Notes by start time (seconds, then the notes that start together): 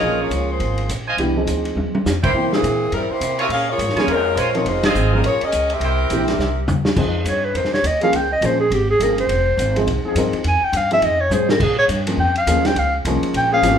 Already playing: C#4 F4 G#4 A#4 C#5 D#5 G#5
0.02 A#1 F3 A#3 C#4 G#4
0.21 A#3 F4 G#4 C#5
0.30 C#2, hi-hat pedal, ride
0.51 A#3 F4 G#4 C5
0.60 G#1, ride
0.78 ride
0.88 A#1, hi-hat pedal, ride
1.08 F4 C5 D#5 G#5
1.17 C2 E3 B3 D4 G4, ride
1.37 F3 C4 D#4 G#4
1.47 D2, hi-hat pedal, ride
1.65 ride
1.75 D#2, high tom
1.95 high tom
2.05 F2, snare, hi-hat pedal
2.23 A#3 E4 G4 A#4 C5 G5, kick, ride
2.33 C3 E3 A#3 C4 G5
2.53 E3 A#3 C4 G#4, snare
2.63 A#2, hi-hat pedal, ride
2.92 G2 G3 C4 E4 A#4, ride
3.10 A#3 E4 G4 C5, muted upright bass stroke
3.20 C3, hi-hat pedal, ride
3.38 C4 F4 G4 A#4 C#5 E5 G#5, ride
3.49 A#2 C#4 G#4 A#4 F5, ride
3.71 A#3 F4 G#4 C#5
3.78 G#2, hi-hat pedal, ride
3.89 snare
3.95 F3 A#3 C#4 F4 G#4 A#4 C#5 G#5, muted upright bass stroke, snare, ride
4.07 F2 G#3 C#4 F4 A#4, ride
4.36 A#1 G#3 C#4 F4 A#4 C5 C#5 G#5, hi-hat pedal, ride
4.55 F3 A#3 C4 D#4 F4 G#4 A#4 C#5, ride
4.65 F1 G#3 D#4 F4 C5, ride
4.83 F3 C4 D#4 F4 G#4 C5 D#5 G#5, snare, ride
4.95 G#1, hi-hat pedal
5.13 F3 G3 A#3 C4 C#4 D#4 G#4 A#4
5.23 A#1 A#3 F4 G#4 C#5, ride
5.41 C#4 G#4 A#4 D#5, muted upright bass stroke, ride
5.52 C#2, hi-hat pedal, ride
5.70 C4 G4 A#4 E5, ride
5.80 C2 E4 A#4 C5 G5, ride
6.10 A#1 E3 A#3 C4 G4, hi-hat pedal, ride
6.28 snare, ride
6.39 C2, snare
6.67 E2, floor tom, hi-hat pedal
6.85 snare
6.96 F2 F3 G#3 C4 D#4 G#4, kick, crash
7.25 G2 C#5, hi-hat pedal, ride
7.45 B4
7.54 F2 F3 C4 D#4 A#4 C5, ride
7.65 snare
7.73 C#5, snare
7.83 D#2 D#5, hi-hat pedal, ride
8.00 F3 G#3 A#3 C#4 G#4 F5, ride
8.13 C#2 G5, ride
8.33 D#5
8.41 A#1 F3 G#3 A#3 C#4 G#4, hi-hat pedal, ride
8.45 C5
8.60 G#4
8.70 G#1 G4, ride
8.91 G#4
8.99 G1 F3 A#3 C#4 G#4, hi-hat pedal, ride
9.03 A#4
9.18 C5, ride
9.28 F1, ride
9.57 G#1, hi-hat pedal, ride
9.76 F3 G#3 C4 D#4 G#4, ride
9.87 C2, ride
10.04 F3 C4 D#4 G#4, muted upright bass stroke
10.15 G2 F3 G#3 C4 D#4 A#4, hi-hat pedal, ride
10.33 muted upright bass stroke, ride
10.44 F2 G#5, ride
10.62 G5, muted upright bass stroke
10.72 G2, hi-hat pedal, ride
10.77 F5
10.91 F3 G#3 C4 D#4 G#4 E5, ride
11.02 F2 D#5, ride
11.21 C#5
11.30 G#2 F3 C4 D#4 G#4 C5, hi-hat pedal, high tom
11.49 A#4, snare
11.60 A#2 G#4, kick, crash
11.79 C#5
11.88 G2, hi-hat pedal, ride
12.07 F3 G#3 A#3 C#4 G#4, ride
12.17 F2 G5
12.35 F5, ride
12.46 D#2 F3 G#3 A#3 C#4 G#4, hi-hat pedal, ride
12.65 G5, snare, ride
12.75 C#2, ride
12.79 F5
13.05 C2 F3 G#3 A#3 C#4 G#4, hi-hat pedal, ride
13.23 muted upright bass stroke, ride
13.33 A#1 G5, ride
13.51 F3 A#3 C#4 G#4 F5
13.62 G#1 F3 G#3 A#3 C#4 F4, hi-hat pedal, ride